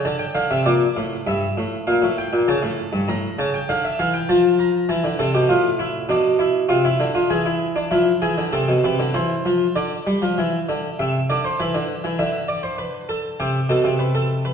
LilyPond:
<<
  \new Staff \with { instrumentName = "Harpsichord" } { \time 4/4 \key d \minor \tempo 4 = 99 a''16 g''16 f''16 e''16 d''4 e''4 f''8 g''8 | a''4 bes''8 a''16 g''16 f''16 e''16 f''16 g''16 a''8 bes''8 | a''8 a'16 g'16 f'8 e'8 d'8 e'8 f'16 e'8 f'16 | gis'16 e'8 d'16 e'8 gis'8 a'8 b'8 c''4 |
d''2 e''8 d''16 c''16 b'4 | e''8 d''16 c''16 b'8 a'8 g'8 a'8 b'16 a'8 b'16 | }
  \new Staff \with { instrumentName = "Harpsichord" } { \clef bass \time 4/4 \key d \minor d8 d16 c16 bes,8 a,8 g,8 a,8 bes,16 a,8 bes,16 | cis16 a,8 g,16 a,8 cis8 d8 e8 f4 | e16 d16 c16 b,16 a,4 b,4 c8 d8 | e4 f8 e16 d16 c16 b,16 c16 d16 e8 f8 |
d8 g16 f16 e8 d8 c8 d8 e16 d8 e16 | d2 c8 b,16 c4~ c16 | }
>>